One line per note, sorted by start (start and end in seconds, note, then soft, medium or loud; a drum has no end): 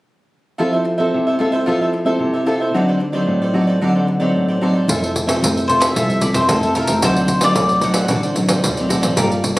0.58 1.10 F3 medium
0.58 0.84 C4 medium
0.58 0.85 E4 soft
0.58 0.71 F4 soft
0.58 0.71 A4 medium
0.58 0.85 A4 soft
0.58 0.72 C5 medium
0.58 0.71 E5 medium
0.73 0.84 A4 soft
0.73 0.84 C5 soft
0.73 0.84 E5 soft
0.84 muted cavaquinho stroke soft
0.98 1.36 C4 medium
0.98 1.36 E4 soft
0.98 1.25 A4 soft
0.98 1.36 A4 soft
0.98 1.25 C5 medium
0.98 1.24 E5 medium
1.14 1.65 C3 medium
1.27 1.38 A4 soft
1.27 1.39 C5 soft
1.27 1.39 E5 soft
1.39 1.56 C4 soft
1.39 1.56 E4 soft
1.39 1.52 F4 soft
1.39 1.52 A4 soft
1.39 1.56 A4 medium
1.39 1.52 C5 soft
1.39 1.51 E5 medium
1.52 1.66 A4 soft
1.52 1.66 C5 medium
1.52 1.65 E5 medium
1.66 2.18 F3 medium
1.66 1.92 C4 soft
1.66 1.92 E4 soft
1.66 1.79 F4 medium
1.66 1.79 A4 medium
1.66 1.93 A4 medium
1.66 1.80 C5 medium
1.66 1.80 E5 medium
1.81 1.92 A4 soft
1.81 1.93 C5 soft
1.81 1.93 E5 soft
1.93 muted cavaquinho stroke soft
2.05 2.42 C4 medium
2.05 2.42 E4 medium
2.05 2.42 A4 medium
2.05 2.33 A4 soft
2.05 2.33 C5 medium
2.05 2.32 E5 medium
2.19 2.71 C3 medium
2.33 2.46 A4 soft
2.33 2.46 C5 soft
2.33 2.46 E5 soft
2.46 2.69 C4 medium
2.46 2.69 E4 medium
2.46 2.59 F4 medium
2.46 2.59 A4 medium
2.46 2.70 A4 medium
2.46 2.60 C5 medium
2.46 2.59 E5 medium
2.60 2.74 A4 soft
2.60 2.73 C5 soft
2.60 2.73 E5 soft
2.74 3.25 D3 medium
2.74 2.99 F#3 soft
2.74 2.99 C4 medium
2.74 2.99 D#4 medium
2.74 2.87 F#4 medium
2.74 2.87 A4 medium
2.74 2.87 C5 medium
2.74 2.87 D5 medium
2.88 2.99 A4 soft
2.88 3.00 C5 soft
2.88 3.00 D5 soft
3.00 muted cavaquinho stroke soft
3.12 3.49 F#3 medium
3.12 3.49 C4 medium
3.12 3.50 D#4 medium
3.12 3.41 A4 soft
3.12 3.40 C5 medium
3.12 3.39 D5 medium
3.27 3.78 A2 medium
3.42 3.54 A4 soft
3.42 3.54 C5 soft
3.42 3.54 D5 soft
3.53 3.77 F#3 soft
3.53 3.76 C4 medium
3.53 3.77 D#4 soft
3.53 3.67 F#4 soft
3.53 3.67 A4 soft
3.53 3.67 C5 soft
3.53 3.66 D5 soft
3.67 3.81 A4 soft
3.67 3.80 C5 soft
3.67 3.80 D5 medium
3.81 4.33 D3 medium
3.81 4.17 F#3 medium
3.81 4.18 C4 medium
3.81 4.18 D#4 soft
3.81 3.94 F#4 medium
3.81 3.94 A4 medium
3.81 3.94 C5 medium
3.81 3.94 D5 medium
3.95 4.07 A4 soft
3.95 4.07 C5 soft
3.95 4.07 D5 soft
4.07 muted cavaquinho stroke soft
4.20 4.57 F#3 medium
4.20 4.57 C4 medium
4.20 4.57 D#4 medium
4.20 4.47 A4 medium
4.20 4.47 C5 soft
4.20 4.46 D5 medium
4.34 4.86 A2 medium
4.48 4.61 A4 soft
4.48 4.61 C5 soft
4.48 4.61 D5 soft
4.61 4.84 F#3 soft
4.61 4.84 C4 medium
4.61 4.84 D#4 medium
4.61 4.74 F#4 medium
4.61 4.75 A4 medium
4.61 4.74 C5 medium
4.61 4.72 D5 medium
4.73 4.88 A4 soft
4.73 4.87 C5 soft
4.73 4.87 D5 soft
4.88 5.34 F1 medium
4.88 5.39 F3 medium
4.88 5.25 C4 medium
4.88 5.25 E4 medium
4.88 5.01 F4 medium
4.88 5.25 A4 medium
4.88 5.02 A4 medium
4.88 5.02 C5 medium
4.88 5.02 E5 medium
4.88 pandeiro medium
5.03 5.14 A4 soft
5.03 5.15 C5 soft
5.03 5.15 E5 soft
5.03 pandeiro soft
5.15 muted cavaquinho stroke soft
5.15 pandeiro soft
5.27 5.64 C4 medium
5.27 5.64 E4 medium
5.27 5.64 A4 medium
5.27 5.55 A4 soft
5.27 5.54 C5 medium
5.27 5.54 E5 medium
5.27 pandeiro medium
5.42 5.88 F1 medium
5.42 5.93 C3 medium
5.42 pandeiro medium
5.56 5.69 A4 soft
5.56 5.69 C5 soft
5.56 5.68 E5 soft
5.56 pandeiro soft
5.68 5.85 C4 soft
5.68 5.85 E4 medium
5.68 5.82 F4 soft
5.68 5.85 A4 medium
5.68 5.82 A4 medium
5.68 5.82 C5 medium
5.68 5.81 C5 medium
5.68 pandeiro soft
5.72 5.80 E5 medium
5.80 5.95 A4 medium
5.80 5.95 C5 medium
5.80 6.23 E5 medium
5.80 5.94 E5 medium
5.80 pandeiro medium
5.95 6.31 C2 loud
5.95 6.47 F3 soft
5.95 6.18 C4 soft
5.95 6.19 E4 medium
5.95 6.08 F4 medium
5.95 6.08 A4 medium
5.95 6.19 A4 medium
5.95 6.09 C5 medium
5.95 6.08 E5 medium
5.95 pandeiro medium
6.09 6.22 A4 soft
6.09 6.22 C5 soft
6.09 6.22 E5 soft
6.09 pandeiro soft
6.21 6.59 C4 medium
6.21 6.58 E4 soft
6.21 6.59 A4 soft
6.21 6.27 D5 medium
6.21 muted cavaquinho stroke soft
6.21 pandeiro medium
6.34 6.47 F2 medium
6.34 6.62 A4 soft
6.34 6.48 C5 medium
6.34 6.62 C5 medium
6.34 6.61 E5 medium
6.34 pandeiro medium
6.49 6.84 F1 medium
6.49 7.00 C3 medium
6.49 6.76 A4 medium
6.49 pandeiro medium
6.63 6.99 C4 medium
6.63 6.99 E4 medium
6.63 6.99 A4 medium
6.63 6.76 A4 soft
6.63 6.76 C5 soft
6.63 6.76 E5 soft
6.63 pandeiro soft
6.75 6.88 F4 medium
6.75 6.89 A4 medium
6.75 7.04 A#4 medium
6.75 6.88 C5 medium
6.75 6.87 E5 medium
6.75 pandeiro soft
6.87 7.01 F1 medium
6.87 7.02 A4 soft
6.87 7.02 C5 soft
6.87 7.01 E5 soft
6.87 pandeiro medium
7.02 7.49 D2 medium
7.02 7.54 D3 soft
7.02 7.39 F#3 medium
7.02 7.39 C4 medium
7.02 7.39 D#4 medium
7.02 7.15 F#4 medium
7.02 7.16 A4 medium
7.02 7.41 C5 medium
7.02 7.16 C5 medium
7.02 7.15 D5 medium
7.02 pandeiro medium
7.16 7.28 A4 soft
7.16 7.28 C5 soft
7.16 7.29 D5 soft
7.16 pandeiro soft
7.28 muted cavaquinho stroke soft
7.28 pandeiro medium
7.41 7.79 F#3 medium
7.41 7.79 C4 medium
7.41 7.79 D#4 medium
7.41 7.70 A4 medium
7.41 7.69 C5 medium
7.41 7.69 D5 medium
7.41 7.85 D5 medium
7.41 pandeiro medium
7.56 8.03 D2 medium
7.56 8.08 A2 medium
7.56 pandeiro medium
7.69 7.83 A4 soft
7.69 7.83 C5 soft
7.69 7.83 D5 soft
7.69 pandeiro soft
7.81 8.18 F#3 medium
7.81 8.18 C4 medium
7.81 8.18 D#4 medium
7.81 7.96 F#4 soft
7.81 7.96 A4 medium
7.81 7.95 C5 soft
7.81 7.94 D5 medium
7.81 8.87 F#5 medium
7.81 pandeiro medium
7.94 8.09 A4 soft
7.94 8.09 C5 medium
7.94 8.09 D5 medium
7.94 pandeiro medium
8.08 8.45 A1 loud
8.08 8.62 D3 medium
8.08 8.23 F#4 medium
8.08 8.23 A4 medium
8.08 8.23 C5 medium
8.08 8.23 D5 medium
8.08 pandeiro medium
8.23 8.35 A4 soft
8.23 8.36 C5 soft
8.23 8.36 D5 soft
8.23 pandeiro soft
8.36 8.62 F#3 soft
8.36 8.63 C4 soft
8.36 8.63 D#4 soft
8.36 muted cavaquinho stroke soft
8.36 pandeiro soft
8.48 8.62 D3 medium
8.48 8.77 A4 soft
8.48 8.76 C5 medium
8.48 8.75 D5 medium
8.48 pandeiro medium
8.64 8.99 D2 medium
8.64 9.16 A2 soft
8.64 pandeiro medium
8.77 9.15 F#3 medium
8.77 9.15 C4 medium
8.77 9.15 D#4 medium
8.77 8.89 A4 soft
8.77 8.89 C5 soft
8.77 8.90 D5 soft
8.77 pandeiro soft
8.89 9.02 F#4 medium
8.89 9.02 A4 medium
8.89 9.01 C5 medium
8.89 9.00 D5 medium
8.89 pandeiro medium
9.01 9.16 A1 medium
9.01 9.17 A4 soft
9.01 9.16 C5 soft
9.01 9.15 D5 medium
9.01 pandeiro medium
9.16 9.59 G1 medium
9.16 9.59 G3 medium
9.16 9.55 A#3 medium
9.16 9.30 G4 medium
9.16 9.30 A#4 medium
9.16 9.30 D5 medium
9.16 9.29 F5 medium
9.16 pandeiro medium
9.20 9.55 F4 medium
9.20 9.55 A4 medium
9.31 9.43 A#4 soft
9.31 9.43 D5 soft
9.31 9.43 F5 soft
9.31 pandeiro soft
9.44 muted cavaquinho stroke soft
9.44 pandeiro medium